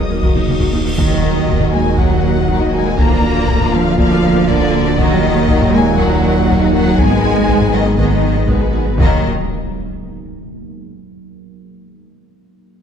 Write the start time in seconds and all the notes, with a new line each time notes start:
Already playing: D#3 D#4 D#5, cymbal swell
0.00 D#1 F#3 A#3 F#4 D#6
0.10 D#2 D#3 A#3
0.23 D#2 D#3 A#3 F#4, taiko
0.35 D#2 F#3 D#4, taiko mid
0.47 D#2 D#3 A#3 D#4, taiko mid
0.60 D#2 D#3 A#3 F#4, taiko
0.73 D#2 F#3 A#3 D#4
0.86 D#2 D#3 F#3 A#3
0.97 D#1 D#2 D#3 F#3 A#3 D#4 F#4 A#4 D#5, taiko, impact
1.10 D#3 F#3 F#4 D#5
1.23 F#3 A#3 D#4 A#4
1.35 D#3 F#3 F#4 D#5
1.48 D#3 F#3 A#3 D#4 A#4, taiko
1.60 D#3 F#3 F#4 D#5, taiko low-mid
1.73 F#3 G#3 A#3 D#4 A#4 G#5
1.86 D#3 F#3 F#4 D#5
1.98 D#3 F#3 A#3 D#4 A#4 F#5, taiko
2.11 D#3 F#3 F#4 D#5
2.23 F#3 A#3 D#4 A#4
2.37 D#3 F#3 F#4 D#5
2.48 D#3 F#3 A#3 D#4 A#4, taiko
2.61 D#3 F#3 D#4 F#4 D#5
2.73 F#3 G#3 A#3 D#4 A#4 G#5
2.85 D#3 F#3 F#4 D#5
2.97 D1 D2 D3 F3 A#3 D4 F4 A#4 A#5, taiko
3.10 F3 D4 F4 D5
3.22 D3 A#3 D4 A#4
3.34 F3 D4 F4 D5
3.48 D3 A#3 D4 A#4, taiko
3.60 F3 D4 F4 D5, taiko low-mid
3.73 D3 F3 A#3 D4 A#4 F5
3.85 F3 D4 F4 D5
3.97 D3 F3 A#3 D4 A#4 F5, taiko
4.10 F3 D4 F4 D5
4.22 D3 A#3 D4 F4 A#4
4.35 F3 D4 F4 D5
4.47 D3 A#3 D4 A#4 D5, taiko
4.60 F3 D4 F4 A#4 D5
4.72 D3 A#3 D4 A#4
4.84 F3 D4 F4 D5
4.96 D#1 D#2 A#2 D#3 F#3 A#3 D#4 F#4 A#4 D#5, taiko
5.09 F#3 D#4 F#4
5.22 D#3 A#3 D#4 F#4 A#4
5.34 F#3 D#4 F#4
5.48 D#3 A#3 F#4 A#4, taiko
5.59 F#3 D#4 F#4, taiko low-mid
5.72 D#3 G#3 A#3 F#4 A#4 G#5
5.84 F#3 D#4 F#4
5.97 D#3 F#3 A#3 F#4 A#4 F#5, taiko
6.10 F#3 D#4 F#4
6.22 D#3 A#3 F#4 A#4
6.35 F#3 D#4 F#4
6.47 D#3 A#3 F#4 A#4, taiko
6.59 F#3 D#4 F#4
6.72 D#3 F#3 A#3 D#4 F#4 A#4 F#5
6.85 F#3 D#4 F#4
6.98 G#1 G#2 D#3 G#3 B3 G#4 G#5, taiko
7.10 G#3 B3 D#4 B4
7.23 D#3 B3 G#4
7.35 G#3 D#4 B4
7.48 D#3 G#3 B3 G#4, taiko
7.61 G#3 D#4 B4, taiko low-mid
7.72 D#3 B3 G#4 D#5
7.85 G#3 D#4 B4
7.98 D#3 G#3 B3 G#4 D#5, taiko
8.10 G#3 D#4 B4
8.22 D#3 B3 D#4 G#4
8.35 G#3 D#4 B4
8.48 B2 D#3 G#3 B3 G#4 B4, taiko
8.60 G#3 D#4 G#4 B4
8.73 D#3 B3 G#4
8.85 G#3 B3 D#4 B4
8.98 D#1 D#2 A#2 D#3 F#3 A#3 D#4 A#4 D#5, taiko, impact